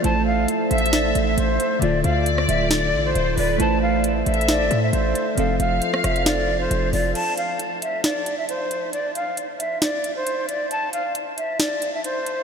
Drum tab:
CC |------------------------------------------------|------------------------------------------------|------------------------------------------------|------------------------------------------------|
HH |x-----------x-----x-x-x-x-----x-----x-----x-----|x-----x-----x-----x-----x-----------x-----o-----|x-----------x-----x-x-x-x-----x-----x-----x-----|x-----x-----x-----x--x--x-----------x-----o-----|
SD |------------------------o-----------------------|---------------r--------o-----------------------|------------------------o-----------------------|---------------r--r-----o-----------------------|

CC |x-----------------------------------------------|------------------------------------------------|------------------------------------------------|
HH |x-----x-----x-----x-----x-----x-----x-----x-----|x-----x-----x-----x-----x-----x-----x-----x-----|x-----x-----x-----x-----x-----x-----x-----x-----|
SD |------------------------o-----------------------|------------------------o-----------------------|------------------------o-----------------------|